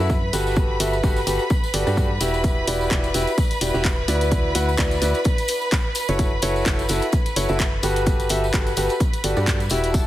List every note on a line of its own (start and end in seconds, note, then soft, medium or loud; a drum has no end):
0.00 0.31 F#2 medium
0.00 0.11 E4 medium
0.00 0.11 F#4 medium
0.00 0.11 A4 medium
0.00 9.95 B4 medium
0.00 0.11 E5 loud
0.00 9.95 B5 medium
0.10 kick loud
0.10 tambourine soft
0.33 0.78 G1 medium
0.33 0.78 F#4 medium
0.33 0.78 G4 medium
0.33 0.78 A4 medium
0.33 0.78 B4 loud
0.33 open hi-hat loud
0.33 tambourine medium
0.47 tambourine soft
0.56 kick loud
0.56 tambourine soft
0.80 1.01 G1 medium
0.80 0.94 F#4 medium
0.80 0.94 G4 medium
0.80 0.94 A4 medium
0.80 0.94 E5 medium
0.80 open hi-hat loud
0.80 tambourine medium
0.93 tambourine soft
1.03 1.25 G1 medium
1.03 1.18 F#4 medium
1.03 1.18 G4 medium
1.03 1.18 A4 medium
1.03 1.18 B4 loud
1.03 kick loud
1.03 tambourine medium
1.16 tambourine soft
1.27 1.39 G1 loud
1.27 1.41 F#4 medium
1.27 1.41 G4 medium
1.27 1.41 A4 medium
1.27 1.41 B4 medium
1.27 open hi-hat loud
1.27 tambourine medium
1.39 tambourine soft
1.50 kick loud
1.50 tambourine medium
1.64 tambourine soft
1.74 1.84 G1 loud
1.74 1.85 F#4 medium
1.74 1.85 G4 medium
1.74 1.85 A4 medium
1.74 1.85 D5 medium
1.74 open hi-hat loud
1.74 tambourine medium
1.87 2.19 G2 medium
1.87 2.07 F#4 medium
1.87 2.07 G4 medium
1.87 2.07 A4 medium
1.87 2.07 D5 medium
1.87 tambourine soft
1.97 kick loud
1.97 tambourine medium
2.20 2.65 E1 medium
2.20 2.65 E4 medium
2.20 2.65 F#4 medium
2.20 2.65 G4 medium
2.20 2.65 E5 medium
2.20 open hi-hat loud
2.20 tambourine medium
2.34 tambourine soft
2.44 kick loud
2.44 closed hi-hat medium
2.44 tambourine soft
2.68 2.89 E1 medium
2.68 2.88 E4 medium
2.68 2.88 F#4 medium
2.68 2.88 G4 medium
2.68 2.88 D5 medium
2.68 open hi-hat loud
2.68 tambourine medium
2.81 tambourine soft
2.91 3.12 E1 medium
2.91 3.05 F#4 medium
2.91 3.05 G4 medium
2.91 3.05 D5 medium
2.91 kick loud
2.91 clap loud
2.91 closed hi-hat medium
3.04 closed hi-hat soft
3.04 tambourine soft
3.14 3.26 E1 medium
3.14 3.29 E4 medium
3.14 3.29 F#4 medium
3.14 3.29 G4 medium
3.14 3.29 E5 medium
3.14 open hi-hat loud
3.14 tambourine medium
3.27 closed hi-hat soft
3.27 tambourine soft
3.38 kick loud
3.38 closed hi-hat medium
3.38 tambourine soft
3.51 closed hi-hat soft
3.51 tambourine soft
3.61 3.72 E1 medium
3.61 3.72 E4 medium
3.61 3.72 F#4 medium
3.61 3.72 G4 medium
3.61 3.72 D5 medium
3.61 open hi-hat loud
3.61 tambourine loud
3.74 4.06 E1 medium
3.74 3.86 E4 medium
3.74 3.86 F#4 medium
3.74 3.86 G4 medium
3.74 3.86 E5 loud
3.74 tambourine soft
3.85 kick medium
3.85 clap loud
3.85 closed hi-hat medium
3.85 tambourine soft
4.08 4.53 D2 medium
4.08 4.53 E4 medium
4.08 4.53 F#4 medium
4.08 4.53 B4 medium
4.08 4.53 D5 medium
4.08 open hi-hat loud
4.08 tambourine medium
4.21 closed hi-hat soft
4.21 tambourine soft
4.32 kick loud
4.32 closed hi-hat medium
4.32 tambourine soft
4.55 4.76 D2 medium
4.55 4.69 E4 medium
4.55 4.69 F#4 medium
4.55 4.69 B4 medium
4.55 4.69 F#5 medium
4.55 open hi-hat loud
4.55 tambourine medium
4.69 tambourine soft
4.78 5.00 D2 loud
4.78 4.93 E4 medium
4.78 4.93 F#4 medium
4.78 4.93 B4 medium
4.78 4.93 D5 medium
4.78 kick medium
4.78 clap loud
4.78 closed hi-hat medium
4.78 tambourine soft
4.91 closed hi-hat soft
4.91 tambourine soft
5.02 5.14 D2 loud
5.02 5.16 E4 medium
5.02 5.16 F#4 medium
5.02 5.16 B4 medium
5.02 5.16 D5 medium
5.02 open hi-hat medium
5.02 tambourine medium
5.14 closed hi-hat soft
5.14 tambourine soft
5.25 kick loud
5.25 closed hi-hat medium
5.25 tambourine soft
5.38 closed hi-hat soft
5.38 tambourine soft
5.48 open hi-hat loud
5.48 tambourine medium
5.61 tambourine soft
5.71 kick medium
5.71 clap loud
5.71 closed hi-hat medium
5.71 tambourine soft
5.95 open hi-hat loud
5.95 tambourine medium
6.08 6.41 F#1 loud
6.08 6.29 E4 medium
6.08 6.29 F#4 medium
6.08 6.29 A4 medium
6.08 6.29 C#5 medium
6.08 closed hi-hat soft
6.08 tambourine soft
6.19 kick loud
6.19 closed hi-hat medium
6.19 tambourine soft
6.42 6.64 F#1 medium
6.42 6.63 E4 medium
6.42 6.63 F#4 medium
6.42 6.63 A4 medium
6.42 6.63 C#5 medium
6.42 open hi-hat loud
6.42 tambourine medium
6.56 tambourine soft
6.66 6.87 F#1 medium
6.66 6.80 E4 medium
6.66 6.80 F#4 medium
6.66 6.80 A4 medium
6.66 6.80 C#5 medium
6.66 kick medium
6.66 clap loud
6.66 closed hi-hat medium
6.66 tambourine soft
6.79 closed hi-hat soft
6.79 tambourine soft
6.89 7.01 F#1 loud
6.89 7.04 E4 medium
6.89 7.04 F#4 medium
6.89 7.04 A4 medium
6.89 7.04 E5 medium
6.89 open hi-hat medium
6.89 tambourine medium
7.02 closed hi-hat soft
7.02 tambourine soft
7.12 kick loud
7.12 closed hi-hat medium
7.12 tambourine soft
7.26 closed hi-hat medium
7.26 tambourine soft
7.36 7.47 F#1 loud
7.36 7.47 E4 medium
7.36 7.47 F#4 medium
7.36 7.47 A4 medium
7.36 7.47 C#5 medium
7.36 open hi-hat medium
7.36 tambourine medium
7.49 7.81 F#1 medium
7.49 7.61 E4 medium
7.49 7.61 F#4 medium
7.49 7.61 A4 medium
7.49 7.61 E5 loud
7.49 tambourine soft
7.59 kick medium
7.59 clap loud
7.59 closed hi-hat medium
7.59 tambourine soft
7.83 8.28 G1 loud
7.83 8.28 F#4 medium
7.83 8.28 G4 medium
7.83 8.28 A4 medium
7.83 8.28 B4 loud
7.83 open hi-hat medium
7.83 tambourine medium
7.96 closed hi-hat medium
7.96 tambourine soft
8.06 kick loud
8.06 closed hi-hat medium
8.06 tambourine soft
8.20 closed hi-hat soft
8.20 tambourine soft
8.29 8.51 G1 medium
8.29 8.44 F#4 medium
8.29 8.44 G4 medium
8.29 8.44 A4 medium
8.29 8.44 E5 medium
8.29 open hi-hat medium
8.29 tambourine medium
8.44 tambourine soft
8.54 8.75 G1 medium
8.54 8.68 F#4 medium
8.54 8.68 G4 medium
8.54 8.68 A4 medium
8.54 8.68 B4 loud
8.54 kick loud
8.54 clap loud
8.54 closed hi-hat medium
8.54 tambourine soft
8.67 closed hi-hat soft
8.67 tambourine soft
8.77 8.89 G1 medium
8.77 8.91 F#4 medium
8.77 8.91 G4 medium
8.77 8.91 A4 medium
8.77 8.91 B4 medium
8.77 open hi-hat medium
8.77 tambourine medium
8.89 closed hi-hat soft
8.89 tambourine soft
9.00 kick loud
9.00 closed hi-hat medium
9.00 tambourine soft
9.13 closed hi-hat soft
9.13 tambourine soft
9.24 9.34 G1 loud
9.24 9.35 F#4 medium
9.24 9.35 G4 medium
9.24 9.35 A4 medium
9.24 9.35 D5 medium
9.24 open hi-hat medium
9.24 tambourine medium
9.37 9.69 G2 medium
9.37 9.57 F#4 medium
9.37 9.57 G4 medium
9.37 9.57 A4 medium
9.37 9.57 D5 medium
9.37 tambourine soft
9.47 kick medium
9.47 clap loud
9.47 closed hi-hat medium
9.47 tambourine soft
9.60 closed hi-hat soft
9.60 tambourine soft
9.70 10.07 E1 medium
9.70 10.07 E4 medium
9.70 10.07 F#4 medium
9.70 10.07 G4 medium
9.70 10.07 E5 medium
9.70 open hi-hat medium
9.70 tambourine medium
9.84 closed hi-hat medium
9.84 tambourine soft
9.94 10.07 A4 medium
9.94 10.07 A5 medium
9.94 kick loud
9.94 closed hi-hat medium
9.94 tambourine medium